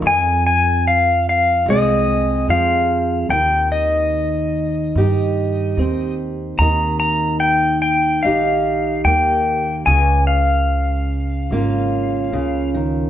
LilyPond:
<<
  \new Staff \with { instrumentName = "Pedal steel guitar" } { \time 4/4 \key ees \mixolydian \tempo 4 = 73 aes''8 aes''8 f''8 f''8 ees''4 f''4 | g''8 ees''2. r8 | bes''8 bes''8 g''8 g''8 f''4 g''4 | aes''8 f''2. r8 | }
  \new Staff \with { instrumentName = "Steel-string acoustic guitar" } { \time 4/4 \key ees \mixolydian << { f'2 <aes c' aes'>2~ | <aes c' aes'>2 <ees' g'>2 | r2 <ees' g'>2 | r2 <bes des' f'>2 | } \\ { f,2. f4 | ees2. c'4 | ees2. bes4 | des2. des8 ees8 | } >> }
  \new Staff \with { instrumentName = "Upright bass" } { \clef bass \time 4/4 \key ees \mixolydian f,2 c,4 f,4 | ees,2 g,4 ees,4 | ees,2 bes,,4 ees,4 | des,2 aes,,4 des,4 | }
>>